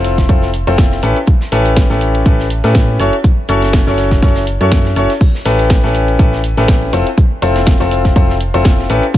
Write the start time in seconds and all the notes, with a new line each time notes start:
Already playing: F1 C4 E4 F4 A4 C5
0.04 open hi-hat, shaker
0.18 kick, snare, closed hi-hat
0.29 F1 C4 E4 F4 A4 C5, kick, closed hi-hat, shaker
0.42 snare
0.54 open hi-hat, shaker
0.67 F1 C4 E4 F4 A4 C5, closed hi-hat
0.78 kick, snare, closed hi-hat, shaker
0.91 snare
1.02 A1 C#4 E4 G4 A4 B4, open hi-hat, shaker
1.16 closed hi-hat
1.27 kick, closed hi-hat, shaker
1.41 snare
1.52 A1 C#4 E4 G4 A4 B4, snare, open hi-hat, shaker
1.66 closed hi-hat
1.76 kick, snare, closed hi-hat, shaker
1.90 A1 C#4 E4 G4 A4 B4, snare
2.01 open hi-hat, shaker
2.15 closed hi-hat
2.26 A1 C#4 E4 G4 A4 B4, kick, closed hi-hat, shaker
2.40 snare
2.50 open hi-hat, shaker
2.64 A2 C#4 E4 G4 A4 B4, snare, closed hi-hat
2.75 kick, snare, closed hi-hat, shaker
3.00 F#1 C#4 E4 F#4 A4 C#5, open hi-hat, shaker
3.13 closed hi-hat
3.24 kick, closed hi-hat, shaker
3.48 F#1 C#4 E4 F#4 A4 C#5, open hi-hat, shaker
3.62 snare, closed hi-hat
3.73 kick, snare, closed hi-hat, shaker
3.87 F#1 C#4 E4 F#4 A4 C#5, snare
3.98 snare, open hi-hat, shaker
4.11 kick, snare, closed hi-hat, shaker
4.23 F#1 C#4 E4 F#4 A4 C#5, kick, snare, closed hi-hat, shaker
4.35 snare, shaker
4.47 open hi-hat, shaker
4.61 F#2 C#4 E4 F#4 A4 C#5, closed hi-hat
4.72 kick, snare, closed hi-hat, shaker
4.85 snare
4.96 F#1 C#4 E4 F#4 A4 C#5, open hi-hat, shaker
5.10 snare, closed hi-hat
5.21 kick, closed hi-hat, crash, shaker
5.35 snare
5.45 A1 C#4 E4 G4 A4 B4, snare, open hi-hat, shaker
5.59 closed hi-hat
5.70 kick, snare, closed hi-hat, shaker
5.84 A1 C#4 E4 G4 A4 B4, snare
5.95 open hi-hat, shaker
6.08 closed hi-hat
6.19 A1 C#4 E4 G4 A4 B4, kick, closed hi-hat, shaker
6.33 snare
6.44 open hi-hat, shaker
6.57 A1 C#4 E4 G4 A4 B4, snare, closed hi-hat
6.68 kick, snare, closed hi-hat, shaker
6.93 F1 C4 E4 F4 A4 C5, open hi-hat, shaker
7.07 closed hi-hat
7.18 kick, closed hi-hat, shaker
7.42 F1 C4 E4 F4 A4 C5, open hi-hat, shaker
7.56 snare, closed hi-hat
7.66 kick, snare, closed hi-hat, shaker
7.80 F1 C4 E4 F4 A4 C5, snare
7.91 open hi-hat, shaker
8.05 kick, snare, closed hi-hat
8.16 F1 C4 E4 F4 A4 C5, kick, closed hi-hat, shaker
8.30 snare
8.40 open hi-hat, shaker
8.54 F1 C4 E4 F4 A4 C5, closed hi-hat
8.64 kick, snare, closed hi-hat, shaker
8.79 snare
8.90 A1 C#4 E4 G4 A4 B4, open hi-hat, shaker
9.03 closed hi-hat
9.14 kick, closed hi-hat, shaker